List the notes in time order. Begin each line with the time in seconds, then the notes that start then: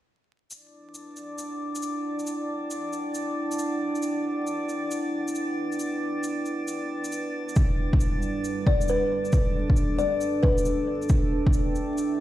0.50 D4 E4 D5, shaker
0.59 B4
0.92 F#5, shaker
1.16 shaker
1.32 G5
1.38 shaker
1.75 shaker
1.82 shaker
2.19 shaker
2.27 shaker
2.71 shaker
2.93 shaker
3.14 shaker
3.51 shaker
3.59 shaker
3.95 shaker
4.02 shaker
4.47 shaker
4.69 shaker
4.91 shaker
5.28 shaker
5.35 shaker
5.72 shaker
5.79 shaker
6.23 shaker
6.46 shaker
6.68 shaker
7.04 shaker
7.12 shaker
7.49 shaker
7.56 G3, kick, shaker
7.77 D4
7.93 kick
8.00 shaker
8.11 A4
8.22 shaker
8.44 shaker
8.67 D5, kick
8.81 shaker
8.88 B4, shaker
9.25 shaker
9.32 kick, shaker
9.70 kick
9.77 shaker
9.99 D5, shaker
10.21 shaker
10.43 B4, kick
10.58 shaker
10.65 shaker
11.02 shaker
11.09 kick, shaker
11.42 G5
11.47 kick
11.53 shaker
11.70 E5
11.75 shaker
11.98 shaker